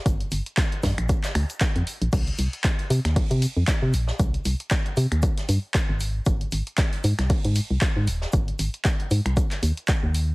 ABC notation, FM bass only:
X:1
M:4/4
L:1/16
Q:"Swing 16ths" 1/4=116
K:Cm
V:1 name="FM bass" clef=bass
G,,, z G,,, z3 G,, B,,, z2 D,, z2 F,, z B,,, | C,, z C,, z3 C, E,, z C, z F,, z C, B,,, z | C,, z C,, z3 C, E,, z2 G,, z2 A,,,2 z | A,,, z A,,, z3 A,, C,, z A,, z C,, z A,, E,,, z |
A,,, z A,,, z3 A,, C,, z2 E,, z2 E,,2 z |]